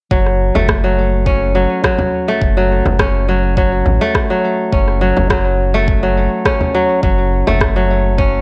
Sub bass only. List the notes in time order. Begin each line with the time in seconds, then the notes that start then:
0.11 F#1
0.55 F#1
2.42 F#1
2.86 F#1
3.86 A1
4.73 F#1
5.17 F#1
7.03 F#1
7.47 F#1